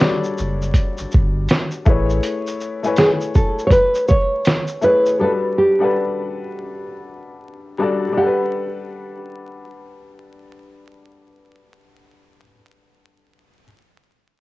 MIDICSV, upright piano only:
0, 0, Header, 1, 2, 480
1, 0, Start_track
1, 0, Key_signature, 1, "major"
1, 0, Tempo, 740741
1, 1450, Time_signature, 4, 2, 24, 8
1, 9333, End_track
2, 0, Start_track
2, 0, Title_t, "Upright piano"
2, 0, Program_c, 0, 0
2, 0, Control_c, 0, 64, 127
2, 0, Note_on_c, 0, 55, 99
2, 0, Note_on_c, 0, 62, 82
2, 0, Note_on_c, 0, 66, 82
2, 0, Note_on_c, 0, 69, 94
2, 0, Note_on_c, 0, 73, 80
2, 0, Note_on_c, 0, 74, 108
2, 576, Note_off_c, 0, 55, 0
2, 579, Note_off_c, 0, 62, 0
2, 583, Note_off_c, 0, 66, 0
2, 586, Note_off_c, 0, 69, 0
2, 611, Note_off_c, 0, 74, 0
2, 1201, Note_on_c, 0, 57, 98
2, 1208, Note_on_c, 0, 64, 90
2, 1216, Note_on_c, 0, 68, 84
2, 1219, Control_c, 0, 64, 0
2, 1220, Note_off_c, 0, 73, 0
2, 1223, Note_on_c, 0, 71, 94
2, 1231, Note_on_c, 0, 73, 114
2, 1337, Control_c, 0, 64, 127
2, 1686, Note_off_c, 0, 57, 0
2, 1689, Note_off_c, 0, 64, 0
2, 1693, Note_off_c, 0, 68, 0
2, 1697, Note_off_c, 0, 71, 0
2, 1701, Note_off_c, 0, 73, 0
2, 1832, Note_on_c, 0, 57, 74
2, 1840, Note_on_c, 0, 64, 72
2, 1847, Note_on_c, 0, 80, 72
2, 1853, Note_on_c, 0, 71, 76
2, 1862, Note_on_c, 0, 73, 87
2, 2495, Note_off_c, 0, 57, 0
2, 2499, Note_off_c, 0, 64, 0
2, 2503, Note_off_c, 0, 80, 0
2, 2506, Note_off_c, 0, 71, 0
2, 2510, Note_off_c, 0, 73, 0
2, 3119, Note_on_c, 0, 57, 71
2, 3127, Note_on_c, 0, 64, 71
2, 3134, Note_on_c, 0, 68, 74
2, 3141, Note_on_c, 0, 71, 68
2, 3148, Note_on_c, 0, 73, 84
2, 3311, Note_off_c, 0, 57, 0
2, 3315, Note_off_c, 0, 64, 0
2, 3318, Note_off_c, 0, 68, 0
2, 3321, Note_off_c, 0, 71, 0
2, 3325, Note_off_c, 0, 73, 0
2, 3362, Note_on_c, 0, 55, 76
2, 3368, Note_on_c, 0, 62, 72
2, 3377, Note_on_c, 0, 66, 71
2, 3379, Control_c, 0, 64, 0
2, 3385, Note_on_c, 0, 69, 65
2, 3390, Note_on_c, 0, 71, 84
2, 3473, Control_c, 0, 64, 127
2, 3621, Note_off_c, 0, 55, 0
2, 3624, Note_off_c, 0, 62, 0
2, 3628, Note_off_c, 0, 66, 0
2, 3632, Note_off_c, 0, 69, 0
2, 3635, Note_off_c, 0, 71, 0
2, 3751, Note_on_c, 0, 55, 81
2, 3759, Note_on_c, 0, 62, 75
2, 3766, Note_on_c, 0, 78, 69
2, 3774, Note_on_c, 0, 69, 70
2, 3781, Note_on_c, 0, 71, 94
2, 4415, Note_off_c, 0, 55, 0
2, 4419, Note_off_c, 0, 62, 0
2, 4422, Note_off_c, 0, 78, 0
2, 4426, Note_off_c, 0, 69, 0
2, 4430, Note_off_c, 0, 71, 0
2, 5042, Note_on_c, 0, 55, 97
2, 5049, Note_on_c, 0, 62, 87
2, 5057, Note_on_c, 0, 66, 83
2, 5064, Note_on_c, 0, 69, 88
2, 5072, Note_on_c, 0, 74, 102
2, 5225, Note_off_c, 0, 55, 0
2, 5235, Note_on_c, 0, 55, 77
2, 5236, Note_off_c, 0, 62, 0
2, 5240, Note_off_c, 0, 66, 0
2, 5243, Note_off_c, 0, 69, 0
2, 5247, Note_off_c, 0, 74, 0
2, 5264, Note_on_c, 0, 62, 78
2, 5295, Note_on_c, 0, 78, 79
2, 5299, Control_c, 0, 64, 0
2, 5324, Note_on_c, 0, 69, 74
2, 5353, Note_on_c, 0, 71, 95
2, 5422, Control_c, 0, 64, 127
2, 8019, Note_off_c, 0, 55, 0
2, 8048, Note_off_c, 0, 62, 0
2, 8079, Note_off_c, 0, 78, 0
2, 8108, Note_off_c, 0, 69, 0
2, 8137, Note_off_c, 0, 71, 0
2, 8840, Control_c, 0, 64, 0
2, 9333, End_track
0, 0, End_of_file